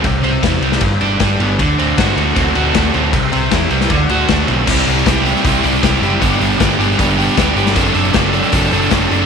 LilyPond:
<<
  \new Staff \with { instrumentName = "Overdriven electric guitar" } { \time 4/4 \key c \lydian \tempo 4 = 156 c8 c'8 e'8 g8 g,8 d'8 g8 b8 | d8 c'8 fis'8 a8 c'8 fis'8 a8 c'8 | c8 c'8 e'8 g8 d8 fis'8 a8 c'8 | <c g c' e' g'>8 <c' e' g'>8 <g c' e' g'>8 <c g c' e' g'>8 <g c' e' g'>8 <c g c' e' g'>8 <g c' e' g'>8 <c' e' g'>8 |
<g b d' g'>8 <b d' g'>8 <g b d' g'>8 <g b d' g'>8 <g b d' g'>8 <g b d' g'>8 <g b d' g'>8 <b d' g'>8 | <fis c' d' a'>8 <c' d' a'>8 <fis c' d' a'>8 <fis c' d' a'>8 <fis c' d' a'>8 <fis c' d' a'>8 <fis c' d' a'>8 <c' d' a'>8 | }
  \new Staff \with { instrumentName = "Picked electric bass" } { \clef bass \time 4/4 \key c \lydian c,8 c,8 e,8 c,8 g,,8 g,,8 g,,8 g,,8 | d,8 d,8 g,8 d,8 d,8 d,8 d,8 d,8 | c,8 c,8 e,8 c,8 d,8 d,8 d,8 b,,8 | c,8 c,8 c,4 c,8 c,8 c,8 fis,,8 |
g,,8 g,,8 g,,8 g,,8 g,,4 d,8 g,,8 | fis,,8 fis,,8 fis,,4 fis,,8 fis,,8 fis,,8 fis,,8 | }
  \new DrumStaff \with { instrumentName = "Drums" } \drummode { \time 4/4 <bd cymr>8 cymr8 <bd cymr sn>8 cymr16 sn16 <bd cymr>8 cymr8 <bd cymr sn>8 cymr8 | <bd cymr>8 cymr8 <bd cymr sn>8 cymr8 <bd cymr>8 cymr8 <bd cymr sn>8 cymr8 | <bd cymr>8 cymr8 <bd cymr sn>8 cymr16 sn16 <bd cymr>8 cymr8 <bd cymr sn>8 cymr8 | <cymc bd>16 hh16 hh16 hh16 <hh bd sn>8 hh16 <hh sn>16 <hh bd>8 hh16 hh16 <hh bd sn>16 hh16 hh8 |
<hh bd>16 hh16 hh16 hh16 <hh bd sn>16 hh16 hh16 sn16 <hh bd>16 hh16 hh16 hh16 <hh bd sn>8 hh16 <hh sn>16 | <hh bd>16 hh16 hh16 hh16 <hh bd sn>8 hh16 hh16 <hh bd>16 hh16 hh16 hh16 <hh bd sn>8 hh8 | }
>>